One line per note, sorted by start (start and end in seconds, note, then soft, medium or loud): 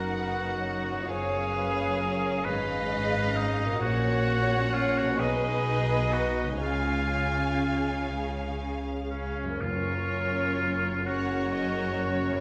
0.00 1.06 F#1 medium
0.00 0.91 F#2 soft
0.00 1.06 F#2 soft
0.00 1.07 A#3 soft
0.00 1.07 D#4 soft
0.00 1.08 F#4 medium
0.00 1.09 F#4 soft
0.00 0.12 A#4 soft
0.00 1.06 A#4 soft
0.00 1.04 C#5 soft
0.00 1.09 F#5 soft
0.14 0.62 B4 soft
0.62 2.42 C#5 medium
0.92 3.77 F#2 soft
0.97 3.79 B3 soft
1.01 3.82 F4 soft
1.06 2.46 G#4 medium
1.06 3.76 C#5 soft
1.06 2.45 F5 soft
1.10 2.44 F#1 medium
1.10 2.44 F#2 soft
1.10 3.82 C#4 soft
1.10 1.55 C#5 medium
1.57 2.02 B4 medium
2.03 2.47 A#4 medium
2.45 3.82 G#1 medium
2.45 3.83 G#2 medium
2.45 3.83 G#4 medium
2.45 3.38 B4 medium
2.45 3.82 D#5 medium
2.45 3.80 F5 medium
3.36 3.81 D#4 medium
3.64 5.15 A#2 medium
3.68 5.17 C#4 soft
3.73 5.10 F#4 soft
3.78 5.21 C#5 soft
3.82 5.17 A#1 medium
3.82 5.17 A#2 medium
3.82 5.18 C#4 medium
3.82 4.76 F#4 medium
3.82 5.18 C#5 medium
3.82 5.18 F#5 medium
4.74 5.00 F4 medium
4.98 5.21 F#4 medium
5.02 6.56 B2 medium
5.07 6.58 B3 soft
5.11 6.60 F#4 soft
5.16 6.14 G#4 medium
5.16 6.61 B4 medium
5.16 6.63 D#5 soft
5.20 6.61 B1 medium
5.20 6.61 B2 medium
5.20 6.61 D#4 medium
5.20 6.61 B4 medium
5.20 6.62 D#5 medium
6.13 6.46 F#4 medium
6.43 9.56 C#3 soft
6.47 9.59 G#3 soft
6.52 9.51 C#4 soft
6.57 9.36 C#3 soft
6.57 9.55 C#5 soft
6.57 9.36 F5 medium
6.61 9.36 C#2 medium
6.61 9.41 C#4 medium
6.61 8.05 F4 medium
6.61 9.37 G#4 soft
6.61 8.81 G#5 medium
9.11 9.62 C#4 medium
9.43 12.29 F#2 soft
9.47 12.40 A#3 soft
9.52 12.40 C#4 soft
9.56 12.40 C#5 soft
9.61 12.40 F#1 medium
9.61 11.03 F#2 medium
9.61 12.40 F#2 soft
9.61 11.04 C#4 medium
9.61 11.09 F4 medium
9.61 11.04 A#4 soft
9.61 11.04 C#5 soft
11.07 12.40 C#4 soft
11.07 12.40 F#4 medium
11.07 12.40 A#4 medium
11.07 12.40 C#5 medium
11.07 11.51 F#5 medium
11.54 12.00 D#5 medium
12.01 12.40 C#5 medium
12.31 12.40 F#2 medium
12.35 12.40 B3 soft